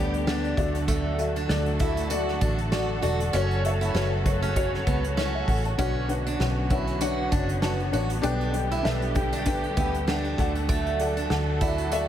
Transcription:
Already playing: D2 B2 D3 G3 A3 B3 D4 G4 A4 C#5 D5 A5
0.14 closed hi-hat
0.27 B3 D4 G4 A4 D5 F#5, snare
0.45 closed hi-hat
0.57 D2 D3 F#3 F#4 A4 D5 E5, kick, closed hi-hat
0.75 closed hi-hat
0.88 A3, kick, closed hi-hat
1.18 F#4 A4 E5, closed hi-hat
1.36 D4, closed hi-hat
1.48 D2 F#4 A4 D5, snare
1.66 closed hi-hat
1.79 E4 F#4 A4 E5, kick, closed hi-hat
1.97 closed hi-hat
2.10 F#4 A4 D5, closed hi-hat
2.28 snare
2.40 A1 D4 F#4 A4 D5, kick, closed hi-hat
2.58 closed hi-hat
2.71 F#4 A4 D5, snare
3.02 E1 F#4 A4 D5, closed hi-hat
3.20 closed hi-hat
3.32 F#1 C#3 F#3 C#4 F#4 A4 C#5, closed hi-hat
3.51 closed hi-hat
3.64 F#4 A4 E5, closed hi-hat
3.81 E4, closed hi-hat
3.94 F#1 C#4 F#4 A4 B4, snare
4.25 F#4 A4 C#5, kick, closed hi-hat
4.42 C#4, closed hi-hat
4.56 F#4 A4 C#5, kick, closed hi-hat
4.74 snare
4.87 C#2 B3, kick, closed hi-hat
5.04 B4, closed hi-hat
5.17 C#4 E4 C#5, snare
5.35 E5
5.48 A1 A4 F#5, kick, open hi-hat
5.65 C#5 A5, closed hi-hat
5.78 B1 B2 D3 F#3 B3 C#4 D4 F#4 B4 C#5 F#5, kick, closed hi-hat
6.08 D4 F#4 B4 C#5 F#5, closed hi-hat
6.27 D4, closed hi-hat
6.39 B1 D4 F#4 B4 C#5 F#5, snare
6.70 D4 E4 F#4 B4 C#5 F#5, kick, closed hi-hat
6.87 closed hi-hat
7.00 D4 F#4 B4 C#5 F#5, closed hi-hat
7.31 F#1 D4 F#4 B4 C#5 F#5, kick, closed hi-hat
7.49 closed hi-hat
7.61 D4 F#4 B4 C#5 A5, snare
7.80 closed hi-hat
7.92 A1 D4 F#4 B4 C#5 F#5, closed hi-hat
8.10 closed hi-hat
8.22 B1 B2 D3 G3 A3 D4 G4 A4 B4 G5, closed hi-hat
8.41 closed hi-hat
8.53 D4 G4 A4 B4 G5, closed hi-hat
8.71 E4, closed hi-hat
8.83 B1 D4 G4 A4 B4 E5, snare
9.02 closed hi-hat
9.14 D4 G4 A4 B4 G5, kick, closed hi-hat
9.33 D4, closed hi-hat
9.46 D4 G4 A4 B4 G5, kick, closed hi-hat
9.64 closed hi-hat
9.77 D2 B3 D4 G4 A4 B4 E5 G5, kick, closed hi-hat
9.94 F#5, closed hi-hat
10.07 D4 G4 A4 B4 F#5 G5, snare
10.24 closed hi-hat
10.38 D2 D3 F#3 F#4 A4 D5 F#5 A5, kick, closed hi-hat
10.55 closed hi-hat
10.69 A3, kick, closed hi-hat
10.86 closed hi-hat
10.99 A4 D5 F#5, closed hi-hat
11.17 D4, closed hi-hat
11.30 D2 A4 D5 F#5, snare
11.61 E4 A4 D5 F#5, kick, closed hi-hat
11.78 closed hi-hat
11.92 F#4 A4 D5 E5, closed hi-hat

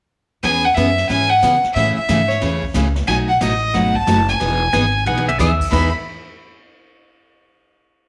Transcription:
0.43 E2 E3 B3 C#4 G#4 G#5, brush sweep, kick, snare
0.64 F#5
0.74 F#2 E3 B3 C#4 G#4 E5, kick, snare, hi-hat pedal
0.98 snare
1.09 G#2 E3 B3 C#4 G#4 G#5, brush sweep, kick, snare
1.29 F#5
1.42 C#3 E3 B3 C#4 G#4, kick, snare, hi-hat pedal
1.64 muted upright bass stroke, snare
1.73 A2 C#3 E3 A3 C#4 G#4 E5, brush sweep, kick, snare
1.95 E5, muted upright bass stroke
2.09 G#2 C#3 E3 A3 C#4 G#4, kick, snare, hi-hat pedal
2.28 C#5, snare
2.41 E2 C#3 E3 A3 C#4 G#4, brush sweep, kick, snare
2.63 kick
2.74 C#2 C#3 E3 A3 C#4 G#4, snare, hi-hat pedal
2.96 snare
3.07 B1 B2 F#3 A3 D#4 F#4 G#5, brush sweep, kick, snare
3.28 F#5
3.41 A1 B2 F#3 A3 D#4 F#4 D#5, kick, snare, hi-hat pedal
3.74 G#1 B2 F#3 A3 D#4 F#4 F#5, brush sweep, kick, snare
3.95 A5, kick
4.07 F#1 B2 F#3 A3 D#4 F#4, kick, snare, hi-hat pedal
4.28 G#5, snare
4.40 E1 E3 B3 D#4 G#4, brush sweep, kick, snare
4.73 G#1 E3 B3 D#4 G#4 G#5, kick, snare, hi-hat pedal
5.06 B1 E3 B3 D#4 G#4 F#5, high tom
5.17 high tom
5.29 E5, high tom
5.39 D#2 E3 B3 D#4 G#4 E5, snare, hi-hat pedal
5.60 kick, crash
5.71 E2 E3 B3 D#4 G#4 E5 B5, kick, snare, crash

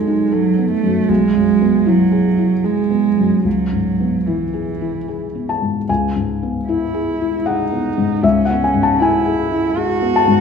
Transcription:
Already playing: B1 F#2 G#3 B3 D#4 A4
0.07 D#4
0.31 F#3 A4
0.58 B3
0.71 A3
0.83 F#2
1.09 B1 G#3
1.35 F#2
1.61 B3
1.86 F#3 E4
2.12 G#4
2.38 E4
2.64 G#3 G#4
2.90 B3
3.17 F#2
3.44 C#2 F#3
3.73 G#2
4.00 B3
4.26 E3 E4
4.53 G#4
4.81 E4
5.08 G#4
5.35 B3
5.49 A5
5.62 G#2
5.89 C#2 G#5
6.16 G#2
6.43 B3
6.68 E4
6.94 G#4
7.21 E4
7.45 D#4 G#4 F#5
7.72 B3
7.98 G#2
8.23 C#2 C#4 E5
8.45 B3 F#5
8.64 G#5
8.74 G#2
8.83 A5
9.00 E4 G#5
9.25 G#4
9.51 E4
9.77 F#4 G#4
10.02 B3
10.16 A5
10.28 G#2

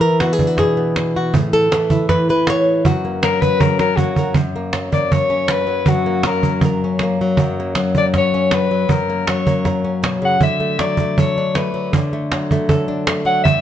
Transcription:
Already playing: E3
0.01 A#4, cajon slap
0.20 B3 F#4, cajon slap
0.33 G#4
0.39 D4, cajon bass
0.47 F#4
0.57 B2 G#4, cajon bass, cajon slap
0.77 B3
0.96 cajon slap
1.15 F#4, cajon slap
1.33 A2 G#4, cajon bass
1.53 A4
1.72 E3, cajon slap
1.90 E4, cajon bass
2.09 E3 B4, cajon bass, cajon slap
2.29 E3 B4
2.47 C#5, cajon slap
2.85 F#2 F#4, cajon bass
3.05 A#3
3.22 F#3 A#4, cajon slap
3.40 B4, cajon bass
3.60 C#3 A#4, cajon bass
3.79 F#3 A#4, cajon slap
3.96 A#3 F#4, cajon bass
4.16 A#4, cajon bass
4.34 F#2, cajon bass
4.56 A#3
4.73 F#3, cajon slap
4.92 A#3 D5, cajon bass
5.12 C#5, cajon bass
5.30 C#4
5.48 B4, cajon slap
5.67 F#3, cajon slap
5.86 F#2 F#4, cajon bass
6.06 A#3
6.23 F#3 A#4, cajon slap
6.43 A#3, cajon bass
6.61 A#4, cajon bass
6.84 C#4
6.99 A#3, cajon slap
7.21 F#3
7.37 F#2, cajon bass
7.60 A#3
7.75 F#3, cajon slap
7.95 A#3 D5, cajon bass
8.14 C#5, cajon bass, cajon slap
8.34 C#4
8.51 B4, cajon slap
8.71 F#3
8.89 F#2 A#4, cajon bass
9.09 A#3, cajon slap
9.27 F#3 C#5, cajon slap
9.47 A#3, cajon bass
9.65 A#4, cajon bass, cajon slap
9.84 C#4
10.03 B2, cajon slap
10.22 C#3 F#5, cajon slap
10.41 D3 E5, cajon bass
10.60 A3, cajon slap
10.79 F#3 D5, cajon slap
10.97 A3, cajon bass
11.18 A4 C#5, cajon bass
11.38 D4
11.55 A3 B4, cajon slap
11.74 F#3, cajon slap
11.93 D3, cajon bass
12.13 A3
12.32 F#3, cajon slap
12.51 A3, cajon bass
12.69 A4, cajon bass
12.88 D4
13.07 A3, cajon slap
13.25 F#3 F#5, cajon slap
13.43 G2 E5, cajon bass

